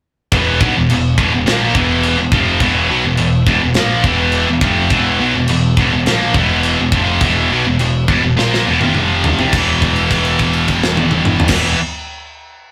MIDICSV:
0, 0, Header, 1, 4, 480
1, 0, Start_track
1, 0, Tempo, 575816
1, 269, Time_signature, 4, 2, 24, 8
1, 10601, End_track
2, 0, Start_track
2, 0, Title_t, "Distorted electric guitar"
2, 0, Program_c, 0, 30
2, 270, Note_on_c, 0, 40, 88
2, 278, Note_on_c, 0, 47, 101
2, 283, Note_on_c, 0, 52, 113
2, 500, Note_off_c, 0, 40, 0
2, 502, Note_off_c, 0, 47, 0
2, 507, Note_off_c, 0, 52, 0
2, 512, Note_on_c, 0, 47, 102
2, 517, Note_on_c, 0, 54, 97
2, 622, Note_off_c, 0, 47, 0
2, 624, Note_off_c, 0, 54, 0
2, 637, Note_on_c, 0, 40, 62
2, 642, Note_on_c, 0, 47, 76
2, 747, Note_off_c, 0, 40, 0
2, 751, Note_off_c, 0, 47, 0
2, 757, Note_on_c, 0, 40, 73
2, 761, Note_on_c, 0, 47, 72
2, 942, Note_off_c, 0, 40, 0
2, 944, Note_off_c, 0, 47, 0
2, 993, Note_on_c, 0, 40, 98
2, 1005, Note_on_c, 0, 47, 97
2, 1100, Note_off_c, 0, 40, 0
2, 1106, Note_off_c, 0, 47, 0
2, 1111, Note_on_c, 0, 40, 73
2, 1117, Note_on_c, 0, 47, 73
2, 1216, Note_off_c, 0, 47, 0
2, 1220, Note_on_c, 0, 46, 87
2, 1226, Note_off_c, 0, 40, 0
2, 1231, Note_on_c, 0, 53, 105
2, 1233, Note_on_c, 0, 58, 101
2, 1452, Note_off_c, 0, 46, 0
2, 1458, Note_off_c, 0, 53, 0
2, 1459, Note_off_c, 0, 58, 0
2, 1461, Note_on_c, 0, 40, 92
2, 1468, Note_on_c, 0, 47, 93
2, 1475, Note_on_c, 0, 52, 99
2, 1804, Note_off_c, 0, 40, 0
2, 1813, Note_off_c, 0, 47, 0
2, 1814, Note_on_c, 0, 40, 64
2, 1819, Note_off_c, 0, 52, 0
2, 1823, Note_on_c, 0, 47, 68
2, 1936, Note_off_c, 0, 40, 0
2, 1940, Note_off_c, 0, 47, 0
2, 1940, Note_on_c, 0, 41, 86
2, 1946, Note_on_c, 0, 48, 96
2, 1952, Note_on_c, 0, 53, 96
2, 2170, Note_off_c, 0, 41, 0
2, 2173, Note_on_c, 0, 40, 86
2, 2174, Note_off_c, 0, 48, 0
2, 2177, Note_off_c, 0, 53, 0
2, 2181, Note_on_c, 0, 47, 103
2, 2193, Note_on_c, 0, 52, 109
2, 2407, Note_off_c, 0, 40, 0
2, 2411, Note_off_c, 0, 47, 0
2, 2417, Note_off_c, 0, 52, 0
2, 2421, Note_on_c, 0, 47, 99
2, 2427, Note_on_c, 0, 54, 106
2, 2531, Note_off_c, 0, 47, 0
2, 2534, Note_off_c, 0, 54, 0
2, 2534, Note_on_c, 0, 40, 72
2, 2543, Note_on_c, 0, 47, 75
2, 2640, Note_off_c, 0, 40, 0
2, 2644, Note_off_c, 0, 47, 0
2, 2650, Note_on_c, 0, 40, 66
2, 2654, Note_on_c, 0, 47, 77
2, 2844, Note_off_c, 0, 40, 0
2, 2846, Note_off_c, 0, 47, 0
2, 2899, Note_on_c, 0, 40, 98
2, 2904, Note_on_c, 0, 47, 114
2, 3009, Note_off_c, 0, 40, 0
2, 3012, Note_off_c, 0, 47, 0
2, 3026, Note_on_c, 0, 47, 67
2, 3027, Note_on_c, 0, 40, 58
2, 3137, Note_off_c, 0, 47, 0
2, 3140, Note_off_c, 0, 40, 0
2, 3141, Note_on_c, 0, 46, 92
2, 3149, Note_on_c, 0, 53, 97
2, 3154, Note_on_c, 0, 58, 98
2, 3370, Note_off_c, 0, 46, 0
2, 3374, Note_off_c, 0, 53, 0
2, 3375, Note_on_c, 0, 40, 98
2, 3376, Note_off_c, 0, 58, 0
2, 3380, Note_on_c, 0, 47, 101
2, 3391, Note_on_c, 0, 52, 117
2, 3721, Note_off_c, 0, 40, 0
2, 3729, Note_off_c, 0, 47, 0
2, 3731, Note_on_c, 0, 40, 72
2, 3735, Note_off_c, 0, 52, 0
2, 3739, Note_on_c, 0, 47, 69
2, 3850, Note_off_c, 0, 40, 0
2, 3853, Note_on_c, 0, 41, 97
2, 3855, Note_off_c, 0, 47, 0
2, 3858, Note_on_c, 0, 48, 93
2, 3864, Note_on_c, 0, 53, 87
2, 4085, Note_off_c, 0, 41, 0
2, 4088, Note_on_c, 0, 40, 108
2, 4089, Note_off_c, 0, 48, 0
2, 4091, Note_off_c, 0, 53, 0
2, 4093, Note_on_c, 0, 47, 104
2, 4095, Note_on_c, 0, 52, 104
2, 4324, Note_off_c, 0, 40, 0
2, 4326, Note_off_c, 0, 47, 0
2, 4327, Note_off_c, 0, 52, 0
2, 4336, Note_on_c, 0, 47, 98
2, 4340, Note_on_c, 0, 54, 105
2, 4448, Note_off_c, 0, 47, 0
2, 4450, Note_off_c, 0, 54, 0
2, 4461, Note_on_c, 0, 40, 66
2, 4463, Note_on_c, 0, 47, 81
2, 4572, Note_off_c, 0, 40, 0
2, 4574, Note_off_c, 0, 47, 0
2, 4582, Note_on_c, 0, 40, 70
2, 4584, Note_on_c, 0, 47, 73
2, 4770, Note_off_c, 0, 40, 0
2, 4771, Note_off_c, 0, 47, 0
2, 4827, Note_on_c, 0, 40, 103
2, 4837, Note_on_c, 0, 47, 105
2, 4934, Note_off_c, 0, 40, 0
2, 4939, Note_off_c, 0, 47, 0
2, 4951, Note_on_c, 0, 40, 63
2, 4954, Note_on_c, 0, 47, 71
2, 5056, Note_off_c, 0, 47, 0
2, 5059, Note_on_c, 0, 46, 89
2, 5063, Note_off_c, 0, 40, 0
2, 5063, Note_on_c, 0, 53, 106
2, 5071, Note_on_c, 0, 58, 108
2, 5291, Note_off_c, 0, 46, 0
2, 5292, Note_off_c, 0, 53, 0
2, 5296, Note_off_c, 0, 58, 0
2, 5304, Note_on_c, 0, 40, 103
2, 5310, Note_on_c, 0, 47, 109
2, 5315, Note_on_c, 0, 52, 103
2, 5650, Note_off_c, 0, 40, 0
2, 5657, Note_off_c, 0, 47, 0
2, 5659, Note_off_c, 0, 52, 0
2, 5660, Note_on_c, 0, 40, 59
2, 5669, Note_on_c, 0, 47, 70
2, 5774, Note_off_c, 0, 40, 0
2, 5777, Note_on_c, 0, 41, 91
2, 5779, Note_off_c, 0, 47, 0
2, 5782, Note_on_c, 0, 48, 100
2, 5792, Note_on_c, 0, 53, 100
2, 6011, Note_off_c, 0, 41, 0
2, 6014, Note_off_c, 0, 48, 0
2, 6019, Note_off_c, 0, 53, 0
2, 6029, Note_on_c, 0, 40, 98
2, 6036, Note_on_c, 0, 47, 110
2, 6040, Note_on_c, 0, 52, 103
2, 6255, Note_off_c, 0, 47, 0
2, 6257, Note_off_c, 0, 40, 0
2, 6263, Note_off_c, 0, 52, 0
2, 6265, Note_on_c, 0, 47, 102
2, 6274, Note_on_c, 0, 54, 114
2, 6376, Note_off_c, 0, 47, 0
2, 6380, Note_off_c, 0, 54, 0
2, 6386, Note_on_c, 0, 40, 67
2, 6386, Note_on_c, 0, 47, 63
2, 6492, Note_off_c, 0, 47, 0
2, 6493, Note_off_c, 0, 40, 0
2, 6502, Note_on_c, 0, 47, 77
2, 6503, Note_on_c, 0, 40, 64
2, 6694, Note_off_c, 0, 47, 0
2, 6695, Note_off_c, 0, 40, 0
2, 6741, Note_on_c, 0, 40, 101
2, 6752, Note_on_c, 0, 47, 110
2, 6855, Note_off_c, 0, 40, 0
2, 6858, Note_off_c, 0, 47, 0
2, 6865, Note_on_c, 0, 40, 66
2, 6868, Note_on_c, 0, 47, 69
2, 6972, Note_off_c, 0, 47, 0
2, 6975, Note_on_c, 0, 46, 87
2, 6984, Note_off_c, 0, 40, 0
2, 6984, Note_on_c, 0, 53, 100
2, 6992, Note_on_c, 0, 58, 97
2, 7213, Note_off_c, 0, 46, 0
2, 7218, Note_off_c, 0, 53, 0
2, 7222, Note_off_c, 0, 58, 0
2, 7228, Note_on_c, 0, 40, 92
2, 7238, Note_on_c, 0, 47, 116
2, 7339, Note_off_c, 0, 40, 0
2, 7343, Note_on_c, 0, 41, 94
2, 7344, Note_off_c, 0, 47, 0
2, 7349, Note_on_c, 0, 48, 96
2, 7356, Note_on_c, 0, 53, 99
2, 7819, Note_off_c, 0, 41, 0
2, 7822, Note_off_c, 0, 48, 0
2, 7825, Note_off_c, 0, 53, 0
2, 7831, Note_on_c, 0, 48, 88
2, 7838, Note_on_c, 0, 55, 100
2, 7942, Note_off_c, 0, 48, 0
2, 7945, Note_off_c, 0, 55, 0
2, 7945, Note_on_c, 0, 40, 99
2, 7964, Note_on_c, 0, 47, 103
2, 7980, Note_on_c, 0, 52, 104
2, 9579, Note_off_c, 0, 40, 0
2, 9582, Note_on_c, 0, 40, 91
2, 9595, Note_off_c, 0, 47, 0
2, 9598, Note_on_c, 0, 47, 90
2, 9610, Note_off_c, 0, 52, 0
2, 9613, Note_on_c, 0, 52, 99
2, 9799, Note_off_c, 0, 40, 0
2, 9807, Note_off_c, 0, 47, 0
2, 9814, Note_off_c, 0, 52, 0
2, 10601, End_track
3, 0, Start_track
3, 0, Title_t, "Picked electric bass"
3, 0, Program_c, 1, 34
3, 270, Note_on_c, 1, 28, 94
3, 491, Note_off_c, 1, 28, 0
3, 506, Note_on_c, 1, 35, 100
3, 618, Note_off_c, 1, 35, 0
3, 635, Note_on_c, 1, 28, 79
3, 742, Note_off_c, 1, 28, 0
3, 751, Note_on_c, 1, 28, 82
3, 970, Note_off_c, 1, 28, 0
3, 985, Note_on_c, 1, 28, 95
3, 1095, Note_off_c, 1, 28, 0
3, 1104, Note_on_c, 1, 28, 82
3, 1212, Note_off_c, 1, 28, 0
3, 1217, Note_on_c, 1, 34, 90
3, 1441, Note_off_c, 1, 34, 0
3, 1462, Note_on_c, 1, 28, 89
3, 1794, Note_off_c, 1, 28, 0
3, 1815, Note_on_c, 1, 28, 80
3, 1928, Note_off_c, 1, 28, 0
3, 1935, Note_on_c, 1, 29, 85
3, 2158, Note_off_c, 1, 29, 0
3, 2176, Note_on_c, 1, 28, 90
3, 2399, Note_off_c, 1, 28, 0
3, 2416, Note_on_c, 1, 35, 95
3, 2527, Note_off_c, 1, 35, 0
3, 2537, Note_on_c, 1, 28, 77
3, 2647, Note_off_c, 1, 28, 0
3, 2656, Note_on_c, 1, 28, 89
3, 2878, Note_off_c, 1, 28, 0
3, 2889, Note_on_c, 1, 28, 94
3, 3003, Note_off_c, 1, 28, 0
3, 3017, Note_on_c, 1, 28, 83
3, 3127, Note_off_c, 1, 28, 0
3, 3138, Note_on_c, 1, 34, 91
3, 3359, Note_off_c, 1, 34, 0
3, 3364, Note_on_c, 1, 28, 89
3, 3703, Note_off_c, 1, 28, 0
3, 3735, Note_on_c, 1, 28, 80
3, 3843, Note_off_c, 1, 28, 0
3, 3848, Note_on_c, 1, 29, 94
3, 4074, Note_off_c, 1, 29, 0
3, 4089, Note_on_c, 1, 28, 89
3, 4314, Note_off_c, 1, 28, 0
3, 4328, Note_on_c, 1, 35, 93
3, 4442, Note_off_c, 1, 35, 0
3, 4447, Note_on_c, 1, 28, 79
3, 4562, Note_off_c, 1, 28, 0
3, 4573, Note_on_c, 1, 28, 85
3, 4797, Note_off_c, 1, 28, 0
3, 4812, Note_on_c, 1, 28, 97
3, 4921, Note_off_c, 1, 28, 0
3, 4926, Note_on_c, 1, 28, 81
3, 5042, Note_off_c, 1, 28, 0
3, 5053, Note_on_c, 1, 34, 87
3, 5278, Note_off_c, 1, 34, 0
3, 5292, Note_on_c, 1, 28, 103
3, 5630, Note_off_c, 1, 28, 0
3, 5665, Note_on_c, 1, 28, 79
3, 5768, Note_off_c, 1, 28, 0
3, 5773, Note_on_c, 1, 29, 88
3, 5999, Note_off_c, 1, 29, 0
3, 6010, Note_on_c, 1, 28, 102
3, 6238, Note_off_c, 1, 28, 0
3, 6258, Note_on_c, 1, 35, 101
3, 6371, Note_off_c, 1, 35, 0
3, 6376, Note_on_c, 1, 28, 88
3, 6490, Note_off_c, 1, 28, 0
3, 6496, Note_on_c, 1, 28, 84
3, 6723, Note_off_c, 1, 28, 0
3, 6739, Note_on_c, 1, 28, 91
3, 6853, Note_off_c, 1, 28, 0
3, 6858, Note_on_c, 1, 28, 84
3, 6972, Note_off_c, 1, 28, 0
3, 6983, Note_on_c, 1, 34, 86
3, 7207, Note_off_c, 1, 34, 0
3, 7224, Note_on_c, 1, 28, 89
3, 7336, Note_off_c, 1, 28, 0
3, 7351, Note_on_c, 1, 29, 91
3, 7797, Note_off_c, 1, 29, 0
3, 7833, Note_on_c, 1, 36, 94
3, 7936, Note_off_c, 1, 36, 0
3, 7941, Note_on_c, 1, 28, 94
3, 9489, Note_off_c, 1, 28, 0
3, 9575, Note_on_c, 1, 28, 96
3, 9780, Note_off_c, 1, 28, 0
3, 10601, End_track
4, 0, Start_track
4, 0, Title_t, "Drums"
4, 267, Note_on_c, 9, 36, 107
4, 271, Note_on_c, 9, 52, 62
4, 350, Note_off_c, 9, 36, 0
4, 355, Note_off_c, 9, 52, 0
4, 505, Note_on_c, 9, 36, 109
4, 589, Note_off_c, 9, 36, 0
4, 747, Note_on_c, 9, 52, 70
4, 830, Note_off_c, 9, 52, 0
4, 982, Note_on_c, 9, 36, 104
4, 1066, Note_off_c, 9, 36, 0
4, 1224, Note_on_c, 9, 52, 63
4, 1233, Note_on_c, 9, 38, 98
4, 1307, Note_off_c, 9, 52, 0
4, 1317, Note_off_c, 9, 38, 0
4, 1458, Note_on_c, 9, 36, 106
4, 1541, Note_off_c, 9, 36, 0
4, 1694, Note_on_c, 9, 52, 64
4, 1777, Note_off_c, 9, 52, 0
4, 1932, Note_on_c, 9, 36, 114
4, 2016, Note_off_c, 9, 36, 0
4, 2168, Note_on_c, 9, 52, 63
4, 2170, Note_on_c, 9, 36, 99
4, 2251, Note_off_c, 9, 52, 0
4, 2254, Note_off_c, 9, 36, 0
4, 2645, Note_on_c, 9, 52, 67
4, 2728, Note_off_c, 9, 52, 0
4, 2889, Note_on_c, 9, 36, 105
4, 2972, Note_off_c, 9, 36, 0
4, 3119, Note_on_c, 9, 52, 52
4, 3128, Note_on_c, 9, 38, 106
4, 3202, Note_off_c, 9, 52, 0
4, 3211, Note_off_c, 9, 38, 0
4, 3367, Note_on_c, 9, 36, 98
4, 3450, Note_off_c, 9, 36, 0
4, 3599, Note_on_c, 9, 52, 59
4, 3683, Note_off_c, 9, 52, 0
4, 3845, Note_on_c, 9, 36, 118
4, 3929, Note_off_c, 9, 36, 0
4, 4084, Note_on_c, 9, 52, 58
4, 4088, Note_on_c, 9, 36, 107
4, 4168, Note_off_c, 9, 52, 0
4, 4172, Note_off_c, 9, 36, 0
4, 4565, Note_on_c, 9, 52, 72
4, 4648, Note_off_c, 9, 52, 0
4, 4810, Note_on_c, 9, 36, 111
4, 4894, Note_off_c, 9, 36, 0
4, 5052, Note_on_c, 9, 52, 60
4, 5061, Note_on_c, 9, 38, 98
4, 5135, Note_off_c, 9, 52, 0
4, 5144, Note_off_c, 9, 38, 0
4, 5288, Note_on_c, 9, 36, 99
4, 5372, Note_off_c, 9, 36, 0
4, 5527, Note_on_c, 9, 52, 60
4, 5611, Note_off_c, 9, 52, 0
4, 5769, Note_on_c, 9, 36, 110
4, 5852, Note_off_c, 9, 36, 0
4, 6007, Note_on_c, 9, 52, 67
4, 6011, Note_on_c, 9, 36, 107
4, 6090, Note_off_c, 9, 52, 0
4, 6094, Note_off_c, 9, 36, 0
4, 6495, Note_on_c, 9, 52, 67
4, 6578, Note_off_c, 9, 52, 0
4, 6737, Note_on_c, 9, 36, 98
4, 6821, Note_off_c, 9, 36, 0
4, 6993, Note_on_c, 9, 38, 58
4, 7077, Note_off_c, 9, 38, 0
4, 7120, Note_on_c, 9, 38, 60
4, 7204, Note_off_c, 9, 38, 0
4, 7342, Note_on_c, 9, 48, 72
4, 7426, Note_off_c, 9, 48, 0
4, 7457, Note_on_c, 9, 47, 88
4, 7540, Note_off_c, 9, 47, 0
4, 7703, Note_on_c, 9, 43, 108
4, 7786, Note_off_c, 9, 43, 0
4, 7825, Note_on_c, 9, 43, 92
4, 7908, Note_off_c, 9, 43, 0
4, 7941, Note_on_c, 9, 49, 88
4, 7943, Note_on_c, 9, 36, 102
4, 8025, Note_off_c, 9, 49, 0
4, 8027, Note_off_c, 9, 36, 0
4, 8185, Note_on_c, 9, 36, 67
4, 8186, Note_on_c, 9, 49, 44
4, 8269, Note_off_c, 9, 36, 0
4, 8270, Note_off_c, 9, 49, 0
4, 8301, Note_on_c, 9, 57, 44
4, 8385, Note_off_c, 9, 57, 0
4, 8424, Note_on_c, 9, 49, 56
4, 8425, Note_on_c, 9, 36, 65
4, 8507, Note_off_c, 9, 49, 0
4, 8508, Note_off_c, 9, 36, 0
4, 8542, Note_on_c, 9, 57, 47
4, 8626, Note_off_c, 9, 57, 0
4, 8660, Note_on_c, 9, 49, 50
4, 8665, Note_on_c, 9, 36, 62
4, 8744, Note_off_c, 9, 49, 0
4, 8748, Note_off_c, 9, 36, 0
4, 8781, Note_on_c, 9, 57, 49
4, 8864, Note_off_c, 9, 57, 0
4, 8901, Note_on_c, 9, 49, 52
4, 8906, Note_on_c, 9, 36, 64
4, 8985, Note_off_c, 9, 49, 0
4, 8990, Note_off_c, 9, 36, 0
4, 9032, Note_on_c, 9, 38, 92
4, 9116, Note_off_c, 9, 38, 0
4, 9147, Note_on_c, 9, 48, 85
4, 9230, Note_off_c, 9, 48, 0
4, 9261, Note_on_c, 9, 47, 97
4, 9344, Note_off_c, 9, 47, 0
4, 9380, Note_on_c, 9, 45, 90
4, 9464, Note_off_c, 9, 45, 0
4, 9501, Note_on_c, 9, 43, 114
4, 9569, Note_on_c, 9, 49, 113
4, 9578, Note_on_c, 9, 36, 111
4, 9578, Note_on_c, 9, 38, 110
4, 9584, Note_off_c, 9, 43, 0
4, 9652, Note_off_c, 9, 49, 0
4, 9661, Note_off_c, 9, 38, 0
4, 9662, Note_off_c, 9, 36, 0
4, 10601, End_track
0, 0, End_of_file